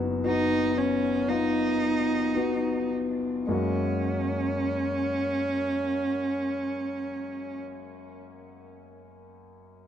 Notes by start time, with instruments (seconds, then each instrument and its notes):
Already playing: grand piano F#1 F#2 B3 D#4 F#4
0.24 grand piano B3 D#4 F#4, cello D#4
0.78 cello C#4
1.28 grand piano B3 D#4 F4, cello D#4
2.35 grand piano B3 D#4 F#4
3.47 grand piano F#2 G#3 A#3 F#4, cello C#4